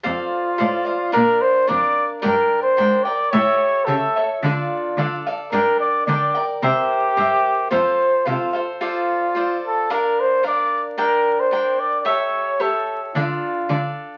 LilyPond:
<<
  \new Staff \with { instrumentName = "Cavaquinho" } { \time 2/4 \key f \major \tempo 4 = 110 <a' c'' d'' f''>4 <a' c'' d'' f''>8 <c'' d'' f''>8 | <d' bes' d'' f''>4 <d' bes' d'' f''>4 | <d' bes' d'' g''>4 <d' bes' d'' g''>8 <bes' d'' g''>8 | <g' a' cis'' e''>4 <g' a' cis'' e''>8 <a' cis'' e''>8 |
<d' a' d'' f''>4 <d' a' d'' f''>8 <a' d'' f''>8 | <d' bes' d'' g''>4 <d' bes' d'' g''>8 <bes' d'' g''>8 | <bes' c'' e'' g''>4 <bes' c'' e'' g''>4 | <f' a' c'' f''>4 <f' a' c'' f''>8 <a' c'' f''>8 |
<f' a' c'' d''>4 <f' a' c'' d''>4 | <d' bes' d'' f''>4 <d' bes' d'' f''>4 | <d' bes' d'' g''>4 <d' bes' d'' g''>4 | <g' a' cis'' e''>4 <g' a' cis'' e''>4 |
<d' a' d'' f''>4 <d' a' d'' f''>4 | }
  \new Staff \with { instrumentName = "Trumpet" } { \time 2/4 \key f \major f'2 | bes'8 c''8 d''8. r16 | bes'8. c''8. d''8 | cis''4 a'8. r16 |
f'4. r8 | bes'8 d''8 d''8. r16 | g'2 | c''4 f'8. r16 |
f'4. a'8 | bes'8 c''8 d''8. r16 | bes'8. c''8. d''16. d''32 | cis''4 a'8. r16 |
f'4. r8 | }
  \new Staff \with { instrumentName = "Cello" } { \clef bass \time 2/4 \key f \major f,8 r8 a,4 | bes,8 r8 f,4 | g,8 r8 aes,4 | a,8 r8 cis4 |
d8 r8 d4 | g,8 r8 d4 | c8 r8 g,4 | f,8 r8 c4 |
r2 | r2 | r2 | r2 |
d8 r8 d4 | }
>>